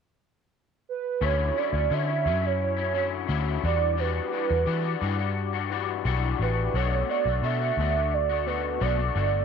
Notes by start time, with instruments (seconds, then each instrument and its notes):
0.89 soft synth lead B4
1.21 picked electric bass D2, clean electric guitar D3 F#3 C#4 E4, soft synth lead C#5
1.56 clean electric guitar D3 F#3 C#4 E4, soft synth lead D5
1.73 picked electric bass D2, clean electric guitar F#3 C#4 E4
1.90 clean electric guitar D3 F#3 C#4 E4, picked electric bass D3, soft synth lead E5
2.08 clean electric guitar F#3 C#4 E4
2.25 picked electric bass F#2, clean electric guitar D3 F#3 C#4 E4
2.42 clean electric guitar F#3 C#4 E4, soft synth lead C#5
2.77 clean electric guitar F#3 C#4 E4
2.93 clean electric guitar D3 F#3 C#4 E4
3.28 picked electric bass D2, clean electric guitar D3 F#3 C#4 E4
3.63 picked electric bass E2, clean electric guitar E3 G3 D4 F#4, soft synth lead D5
3.97 clean electric guitar E3 G3 D4 F#4, soft synth lead B4
4.32 clean electric guitar E3 G3 D4 F#4
4.49 picked electric bass E2, clean electric guitar G3 D4 F#4
4.66 clean electric guitar E3 G3 D4 F#4, picked electric bass E3
4.83 clean electric guitar G3 D4 F#4
5.01 picked electric bass G2, clean electric guitar E3 G3 D4 F#4
5.18 clean electric guitar G3 D4 F#4
5.53 clean electric guitar G3 D4 F#4
5.70 clean electric guitar E3 G3 D4 F#4
6.05 picked electric bass B1, clean electric guitar E3 G3 D4 F#4
6.39 picked electric bass A1, clean electric guitar E3 G3 D4 F#4, soft synth lead B4
6.74 picked electric bass B1, clean electric guitar B2 A3 D4 F#4, soft synth lead C#5
7.09 clean electric guitar B2 A3 D4 F#4, soft synth lead D5
7.25 picked electric bass B1, clean electric guitar A3 D4 F#4
7.43 picked electric bass B2, clean electric guitar B2 A3 D4 F#4, soft synth lead E5
7.61 clean electric guitar A3 D4 F#4
7.77 picked electric bass D2, clean electric guitar B2 A3 D4 F#4
7.94 clean electric guitar A3 D4 F#4
8.13 soft synth lead D5
8.29 clean electric guitar A3 D4 F#4
8.46 clean electric guitar B2 A3 D4 F#4, soft synth lead B4
8.80 picked electric bass B1, clean electric guitar B2 A3 D4 F#4, soft synth lead D5
8.97 clean electric guitar A3 D4 F#4
9.14 picked electric bass G1, clean electric guitar B2 A3 D4 F#4, soft synth lead D5